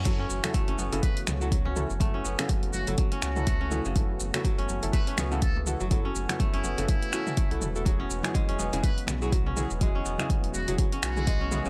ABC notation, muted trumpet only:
X:1
M:4/4
L:1/16
Q:"Swing 16ths" 1/4=123
K:F#m
V:1 name="Muted trumpet"
z8 B z6 z | z6 F z3 F6 | z8 B z3 A z3 | z4 z E3 E6 z2 |
z8 B z6 z | z6 F z3 F6 |]